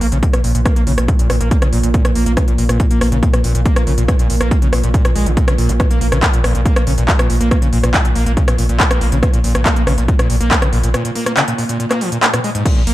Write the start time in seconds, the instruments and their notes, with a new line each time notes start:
Already playing: synth drone A#2
0.01 sub bass A#1, acid bass A#3, open hi-hat
0.12 sub bass A#1, acid bass C#3, closed hi-hat
0.23 acid bass A#2, kick, closed hi-hat
0.33 acid bass A#2, cross-stick, closed hi-hat
0.44 sub bass A#1, acid bass A#2, open hi-hat
0.55 sub bass A#1, acid bass A#2, closed hi-hat
0.65 acid bass A#3, kick, cross-stick, closed hi-hat
0.76 acid bass A#3, closed hi-hat
0.87 sub bass A#1, acid bass C#3, open hi-hat
0.98 sub bass A#1, acid bass A#2, cross-stick, closed hi-hat
1.08 acid bass A#2, kick, closed hi-hat
1.19 acid bass A#2, closed hi-hat
1.30 sub bass A#1, acid bass A#2, cross-stick, open hi-hat
1.41 sub bass A#1, acid bass A#3, closed hi-hat
1.51 acid bass A#3, kick, closed hi-hat
1.62 acid bass C#3, cross-stick, closed hi-hat
1.73 sub bass A#1, acid bass A#2, open hi-hat
1.83 sub bass A#1, acid bass A#2, closed hi-hat
1.94 acid bass A#2, kick, closed hi-hat
2.05 acid bass A#2, cross-stick, closed hi-hat
2.15 sub bass A#1, acid bass A#3, open hi-hat
2.26 sub bass A#1, acid bass A#3, closed hi-hat
2.37 acid bass C#3, kick, cross-stick, closed hi-hat
2.48 acid bass A#2, closed hi-hat
2.58 sub bass A#1, acid bass A#2, open hi-hat
2.69 sub bass A#1, acid bass A#2, cross-stick, closed hi-hat
2.80 acid bass A#2, kick, closed hi-hat
2.91 acid bass A#3, closed hi-hat
3.01 sub bass A#1, acid bass A#3, cross-stick, open hi-hat
3.12 sub bass A#1, acid bass C#3, closed hi-hat
3.23 acid bass A#2, kick, closed hi-hat
3.34 acid bass A#2, cross-stick, closed hi-hat
3.44 sub bass A#1, acid bass A#2, open hi-hat
3.55 sub bass A#1, acid bass A#2, closed hi-hat
3.65 acid bass A#3, kick, closed hi-hat
3.76 acid bass A#3, cross-stick, closed hi-hat
3.87 sub bass A#1, acid bass C#3, open hi-hat
3.98 sub bass A#1, acid bass A#2, closed hi-hat
4.08 acid bass A#2, kick, cross-stick, closed hi-hat
4.19 acid bass A#2, closed hi-hat
4.30 sub bass A#1, acid bass A#2, open hi-hat
4.41 sub bass A#1, acid bass A#3, cross-stick, closed hi-hat
4.51 acid bass A#3, kick, closed hi-hat
4.62 acid bass C#3, closed hi-hat
4.73 sub bass A#1, acid bass A#2, cross-stick, open hi-hat
4.83 sub bass A#1, acid bass A#2, closed hi-hat
4.94 acid bass A#2, kick, closed hi-hat
5.05 acid bass A#2, cross-stick, closed hi-hat
5.16 sub bass A#1, acid bass G#3, open hi-hat
5.26 sub bass A#1, acid bass C#3, closed hi-hat
5.37 acid bass A#2, kick, closed hi-hat
5.48 acid bass C#3, cross-stick, closed hi-hat
5.58 sub bass A#1, acid bass A#2, open hi-hat
5.69 sub bass A#1, acid bass A#3, closed hi-hat
5.80 acid bass A#2, kick, cross-stick, closed hi-hat
5.91 acid bass A#3, closed hi-hat
6.01 sub bass A#1, acid bass A#3, open hi-hat
6.12 sub bass A#1, acid bass C#3, cross-stick, closed hi-hat
6.23 acid bass A#2, kick, clap, closed hi-hat
6.33 acid bass A#2, closed hi-hat
6.44 sub bass A#1, acid bass A#2, cross-stick, open hi-hat
6.55 sub bass A#1, acid bass A#2, closed hi-hat
6.66 acid bass A#3, kick, closed hi-hat
6.76 acid bass A#3, cross-stick, closed hi-hat
6.87 sub bass A#1, acid bass C#3, open hi-hat
6.98 sub bass A#1, acid bass A#2, closed hi-hat
7.08 acid bass A#2, kick, clap, closed hi-hat
7.19 acid bass A#2, cross-stick, closed hi-hat
7.30 sub bass A#1, acid bass A#2, open hi-hat
7.41 sub bass A#1, acid bass A#3, closed hi-hat
7.51 acid bass A#3, kick, cross-stick, closed hi-hat
7.62 acid bass C#3, closed hi-hat
7.73 sub bass A#1, acid bass A#2, open hi-hat
7.83 sub bass A#1, acid bass A#2, cross-stick, closed hi-hat
7.94 acid bass A#2, kick, clap, closed hi-hat
8.05 acid bass A#2, closed hi-hat
8.16 sub bass A#1, acid bass A#3, open hi-hat
8.26 sub bass A#1, acid bass A#3, closed hi-hat
8.37 acid bass C#3, kick, closed hi-hat
8.48 acid bass A#2, cross-stick, closed hi-hat
8.58 sub bass A#1, acid bass A#2, open hi-hat
8.69 sub bass A#1, acid bass A#2, closed hi-hat
8.80 kick, clap, closed hi-hat
8.91 acid bass A#3, cross-stick, closed hi-hat
9.01 sub bass A#1, acid bass A#3, open hi-hat
9.12 sub bass A#1, acid bass C#3, closed hi-hat
9.23 acid bass A#2, kick, cross-stick, closed hi-hat
9.33 acid bass A#2, closed hi-hat
9.44 sub bass A#1, acid bass A#2, open hi-hat
9.55 sub bass A#1, acid bass A#2, cross-stick, closed hi-hat
9.65 acid bass A#3, kick, clap, closed hi-hat
9.76 acid bass A#3, closed hi-hat
9.87 sub bass A#1, acid bass C#3, cross-stick, open hi-hat
9.98 sub bass A#1, acid bass A#2, closed hi-hat
10.08 acid bass A#2, kick, closed hi-hat
10.19 acid bass A#2, cross-stick, closed hi-hat
10.30 sub bass A#1, acid bass A#2, open hi-hat
10.41 sub bass A#1, acid bass A#3, closed hi-hat
10.51 acid bass A#3, kick, clap, closed hi-hat
10.62 acid bass C#3, cross-stick, closed hi-hat
10.73 sub bass A#1, acid bass A#2, open hi-hat
10.83 sub bass A#1, acid bass A#2, closed hi-hat
10.94 acid bass A#2, cross-stick, closed hi-hat
11.05 acid bass A#2, closed hi-hat
11.15 acid bass A#3, open hi-hat
11.26 acid bass A#3, cross-stick, closed hi-hat
11.37 acid bass C#3, clap, closed hi-hat
11.48 acid bass A#2, closed hi-hat
11.58 acid bass A#2, open hi-hat
11.69 acid bass A#2, closed hi-hat
11.80 acid bass A#2, closed hi-hat
11.91 acid bass A#3, cross-stick, clap, closed hi-hat
12.01 acid bass F3, open hi-hat
12.12 acid bass A#2, closed hi-hat
12.23 acid bass A#3, clap, closed hi-hat
12.33 acid bass A#2, cross-stick, closed hi-hat
12.44 acid bass G#3, open hi-hat
12.55 acid bass G#2, closed hi-hat
12.66 acid bass A#2, kick, closed hi-hat, crash, ride
12.76 acid bass A#2
12.87 sub bass A#1, acid bass A#3, open hi-hat, ride